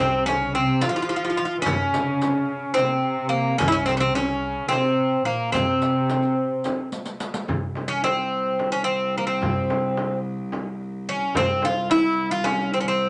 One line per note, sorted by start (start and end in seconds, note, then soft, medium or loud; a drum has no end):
0.00 0.66 C2 loud
0.00 0.28 C3 medium
0.00 0.26 C4 medium
0.00 0.29 C4 medium
0.00 darbuka tek medium
0.00 frame drum medium
0.26 0.56 C#3 medium
0.26 0.54 C#4 medium
0.26 0.57 C#4 medium
0.26 riq medium
0.26 darbuka tek medium
0.26 frame drum medium
0.43 darbuka ka soft
0.55 0.83 C3 medium
0.55 0.84 C4 medium
0.55 0.83 C4 medium
0.81 1.60 F3 loud
0.81 0.88 F4 loud
0.81 0.93 F4 medium
0.81 riq soft
0.81 darbuka tek medium
0.81 frame drum medium
0.89 0.95 F4 medium
0.89 1.01 G4 medium
0.96 1.01 F4 medium
0.96 1.08 F4 medium
1.02 1.08 F4 medium
1.06 1.15 F4 medium
1.06 1.16 G4 medium
1.14 1.25 F4 medium
1.14 1.23 F4 medium
1.23 1.29 F4 medium
1.23 1.33 G4 medium
1.30 1.36 F4 medium
1.30 1.65 F4 medium
1.37 1.44 F4 medium
1.37 darbuka ka soft
1.45 1.55 F4 medium
1.58 1.65 E3 medium
1.62 2.60 C3 medium
1.62 2.74 C#4 loud
1.62 2.45 C#4 medium
1.62 darbuka dum medium
1.62 frame drum loud
1.66 2.77 C#3 medium
1.66 riq medium
1.94 riq medium
1.94 darbuka tek medium
1.94 frame drum medium
2.22 riq medium
2.22 darbuka tek medium
2.22 frame drum medium
2.36 darbuka ka soft
2.49 2.79 C#4 medium
2.49 darbuka ka soft
2.74 3.60 C3 medium
2.74 3.29 C4 medium
2.74 2.86 C4 medium
2.74 riq medium
2.74 darbuka tek medium
2.74 frame drum medium
2.84 2.94 A#3 medium
2.93 3.19 C4 medium
3.19 3.34 C4 medium
3.29 3.58 A#3 medium
3.29 3.62 A#3 medium
3.29 darbuka ka soft
3.58 4.55 C2 loud
3.58 3.72 C#3 medium
3.58 3.66 C#4 loud
3.58 3.90 C#4 medium
3.58 riq medium
3.58 frame drum loud
3.58 darbuka dum medium
3.68 3.74 E4 medium
3.72 3.86 C#3 medium
3.72 3.85 C#4 medium
3.86 4.15 C3 medium
3.86 3.94 C4 medium
3.86 4.02 C4 medium
3.86 riq medium
3.86 darbuka tek medium
3.86 frame drum medium
3.97 4.15 C4 medium
3.97 4.00 C#4 medium
4.04 4.16 C4 medium
4.14 4.70 C#3 medium
4.14 4.28 C4 medium
4.14 4.68 C#4 medium
4.14 riq soft
4.14 darbuka tek medium
4.14 frame drum medium
4.28 4.75 C#4 medium
4.44 darbuka ka soft
4.69 5.22 C3 medium
4.69 5.25 C4 medium
4.69 riq medium
4.69 darbuka tek medium
4.69 frame drum medium
4.73 5.28 C4 medium
5.25 5.54 A#2 medium
5.25 5.51 A#3 medium
5.25 darbuka ka soft
5.49 6.88 C4 medium
5.49 5.56 C#4 medium
5.54 6.48 C3 medium
5.54 6.92 C3 medium
5.54 6.93 C4 loud
5.54 riq medium
5.54 frame drum medium
5.54 darbuka dum medium
5.82 riq medium
5.82 darbuka tek medium
6.09 riq soft
6.09 darbuka tek medium
6.09 frame drum medium
6.23 riq soft
6.38 darbuka ka soft
6.64 riq soft
6.64 darbuka tek medium
6.64 frame drum medium
6.92 riq medium
6.92 darbuka tek soft
7.06 riq medium
7.06 darbuka ka medium
7.20 riq medium
7.20 darbuka tek medium
7.34 riq medium
7.34 darbuka ka medium
7.48 11.34 C2 medium
7.48 8.42 C3 medium
7.48 darbuka dum medium
7.48 frame drum medium
7.75 darbuka tek medium
7.75 frame drum medium
7.88 8.03 C#4 medium
8.04 8.72 C4 medium
8.04 darbuka tek medium
8.04 frame drum medium
8.59 darbuka tek medium
8.59 frame drum medium
8.72 8.84 C#4 medium
8.84 9.17 C4 medium
9.17 9.26 A#3 medium
9.27 10.18 C4 medium
9.41 10.36 C3 loud
9.41 darbuka dum medium
9.41 frame drum medium
9.70 darbuka tek medium
9.70 frame drum medium
9.97 darbuka tek medium
9.97 frame drum medium
10.52 darbuka tek medium
10.52 frame drum medium
11.09 11.36 C#4 medium
11.09 darbuka ka soft
11.34 13.09 C2 medium
11.34 12.30 C3 medium
11.34 11.64 C4 loud
11.34 darbuka dum medium
11.34 frame drum loud
11.62 11.90 F4 medium
11.62 darbuka tek medium
11.62 frame drum medium
11.90 12.29 E4 loud
11.90 darbuka tek medium
11.90 frame drum medium
12.31 12.46 F4 medium
12.44 12.73 C#4 medium
12.44 darbuka tek medium
12.44 frame drum medium
12.74 12.80 C4 medium
12.81 12.87 C#4 medium
12.88 13.09 C4 medium
13.02 darbuka ka soft